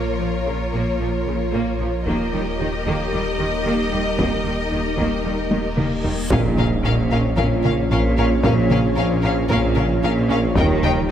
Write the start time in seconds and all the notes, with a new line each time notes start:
Already playing: A#1 F3 A#3 F4 A#4 C#5
0.19 A#1 A#2 F3
0.46 A#1 A#2 C#3
0.73 A#1 A#2 A#3
0.99 A#1 A#2 F3
1.26 A#1 A#2 C#3
1.53 A#1 A#2 A#3
1.80 A#1 A#2 F3
2.06 D#1 D#2 D#3 G3 A#3 D#4 G4 A#4 D#5, taiko
2.32 D#2 D#3 G3
2.59 D#2 D#3
2.86 D#2 D#3 A#3, taiko
3.12 D#2 D#3 G3
3.39 D#2 D#3
3.65 D#2 D#3 A#3
3.92 D#2 D#3 G3
4.18 D#2 D#3 A#3, taiko, reverse cymbal
4.45 D#2 D#3 G3
4.71 D#2 D#3
4.97 D#2 D#3 A#3, taiko
5.24 D#2 D#3 G3
5.51 D#2 D#3, taiko high
5.77 D#2 D#3 A#3, taiko mid
6.04 D#2 D#3 G3, taiko low
6.30 A#1 A#2 F3 A#3 C#4 F4 A#4 C#5 F5, taiko, impact
6.58 A#2 C#4 A#4 F5, taiko mid
6.85 A#1 A#2 C#4 A#4 F5
7.11 A#2 C#4 A#4 F5
7.37 A#1 A#2 C#4 A#4 F5, taiko
7.63 A#2 C#4 A#4 F5, taiko mid
7.91 A#1 A#2 C#4 A#4 F5
8.18 A#2 C#4 A#4 F5
8.43 A#1 A#2 C#4 A#4 F5, taiko
8.70 A#2 C#4 A#4 F5, taiko mid
8.96 A#1 A#2 C#4 A#4 F5
9.22 A#2 C#4 A#4 F5
9.49 A#1 A#2 C#4 A#4 F5, taiko
9.75 A#2 C#4 A#4 F5, taiko mid
10.03 A#1 A#2 C#4 A#4 F5
10.29 A#2 C#4 A#4 F5
10.54 D#1 D#2 D#3 G3 A#3 D#4 A#4 D#5 G5, taiko
10.83 D#2 D#4 A#4 G5, taiko mid